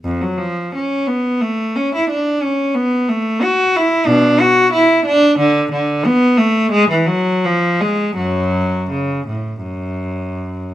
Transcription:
0.05 0.23 F2 medium
0.21 0.40 F#3 medium
0.38 0.75 F3 medium
0.75 1.09 C#4 medium
1.07 1.43 B3 medium
1.41 1.77 A3 medium
1.76 1.94 C#4 medium
1.95 2.12 E4 medium
2.10 2.44 D4 medium
2.42 2.76 C#4 medium
2.75 3.09 B3 medium
3.08 3.42 A3 medium
3.42 3.76 F#4 medium
3.76 4.09 E4 medium
4.06 4.37 B2 medium
4.06 4.39 D4 medium
4.40 4.72 F#4 medium
4.73 5.04 E4 medium
5.05 5.38 D4 medium
5.39 5.70 D3 medium
5.71 6.04 D3 medium
6.06 6.39 B3 medium
6.38 6.72 A3 medium
6.72 6.89 G#3 loud
6.90 7.08 E3 medium
7.06 7.43 F#3 medium
7.45 7.81 F3 medium
7.80 8.17 G#3 medium
8.16 8.86 F#2 medium
8.16 8.88 F#3 medium
8.90 9.27 C#3 medium
9.27 9.64 A2 soft
9.63 10.71 F#2 soft

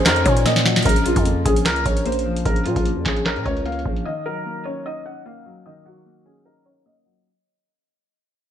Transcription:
0.00 0.26 D#3 medium
0.00 0.65 F#3 medium
0.00 0.45 A#3 medium
0.00 0.25 C#4 medium
0.00 0.05 D#4 medium
0.00 0.23 C5 medium
0.05 0.25 F2 loud
0.05 0.85 D#4 medium
0.05 0.23 A#4 medium
0.05 snare loud
0.05 clap loud
0.05 closed hi-hat medium
0.16 closed hi-hat medium
0.25 0.83 A#2 loud
0.25 0.85 C#4 medium
0.25 0.45 C#5 medium
0.25 0.43 C#5 medium
0.25 kick loud
0.25 closed hi-hat medium
0.37 closed hi-hat medium
0.45 0.85 A#3 loud
0.45 0.83 D#5 medium
0.45 snare medium
0.45 closed hi-hat medium
0.56 snare medium
0.65 0.85 F#3 medium
0.65 snare loud
0.76 snare loud
0.76 closed hi-hat soft
0.82 1.03 A#4 medium
0.82 closed hi-hat medium
0.85 1.15 A#1 loud
0.85 1.86 C#3 loud
0.85 kick loud
0.85 closed hi-hat medium
0.89 closed hi-hat medium
0.96 closed hi-hat medium
1.05 2.05 F3 medium
1.05 1.43 F4 medium
1.05 closed hi-hat medium
1.16 1.44 F2 loud
1.16 kick loud
1.16 closed hi-hat medium
1.25 2.04 A#3 medium
1.25 closed hi-hat medium
1.45 1.67 A#1 loud
1.45 1.84 C#4 medium
1.45 1.63 G#4 medium
1.45 kick medium
1.45 closed hi-hat medium
1.56 closed hi-hat medium
1.66 1.85 C#2 loud
1.66 2.66 A#4 medium
1.66 1.83 A#4 loud
1.66 snare loud
1.66 clap medium
1.66 closed hi-hat medium
1.76 closed hi-hat soft
1.85 2.43 A#1 loud
1.85 2.86 C#4 medium
1.85 2.03 C#5 medium
1.85 kick loud
1.85 closed hi-hat medium
1.97 closed hi-hat medium
2.05 2.84 A#3 medium
2.05 2.43 C5 medium
2.05 closed hi-hat medium
2.12 closed hi-hat medium
2.19 closed hi-hat medium
2.26 2.64 F3 medium
2.36 closed hi-hat medium
2.45 2.67 A#1 loud
2.45 3.46 C#3 medium
2.45 2.63 A#4 medium
2.45 kick loud
2.45 closed hi-hat medium
2.56 closed hi-hat soft
2.65 2.76 A#2 loud
2.65 3.65 F3 medium
2.65 3.03 F4 medium
2.65 closed hi-hat medium
2.76 2.98 A#1 loud
2.76 kick loud
2.76 closed hi-hat medium
2.85 3.64 A#3 medium
2.85 closed hi-hat medium
2.96 3.05 F2 medium
3.05 3.38 A#1 loud
3.05 3.44 C#4 medium
3.05 3.23 G#4 medium
3.05 kick loud
3.05 snare medium
3.05 clap medium
3.05 closed hi-hat medium
3.16 closed hi-hat medium
3.26 3.43 A#4 medium
3.26 4.06 C#5 medium
3.26 snare loud
3.26 clap medium
3.26 closed hi-hat medium
3.36 3.45 A#2 loud
3.36 closed hi-hat soft
3.46 3.84 C#2 loud
3.46 4.06 C#4 medium
3.46 3.63 C#5 medium
3.46 kick medium
3.46 closed hi-hat medium
3.57 closed hi-hat medium
3.66 4.06 A#3 medium
3.66 4.03 F5 medium
3.66 closed hi-hat medium
3.72 closed hi-hat medium
3.79 closed hi-hat medium
3.86 4.05 A#1 loud
3.86 4.06 F3 medium
3.86 kick loud
3.96 closed hi-hat medium
4.05 5.06 D#3 medium
4.05 4.23 D#5 medium
4.26 5.26 F#3 medium
4.26 4.63 A#4 medium
4.46 5.24 A#3 medium
4.65 5.04 C#4 medium
4.65 4.83 C#5 medium
4.86 5.86 D#4 medium
4.86 5.03 D#5 medium
5.06 6.06 C#4 medium
5.06 5.23 F#5 medium
5.26 6.04 A#3 medium
5.26 5.63 F5 medium
5.46 5.84 F#3 medium
5.66 6.66 D#3 medium
5.66 5.83 D#5 medium
5.86 6.86 F#3 medium
5.86 6.23 F#4 medium
6.06 6.84 A#3 medium
6.26 6.64 C#4 medium
6.26 6.43 G#4 medium
6.46 7.26 D#4 medium
6.46 6.63 A#4 medium
6.66 7.26 C#4 medium
6.66 6.83 C#5 medium
6.86 7.26 A#3 loud
6.86 7.23 D#5 medium
7.06 7.26 F#3 medium

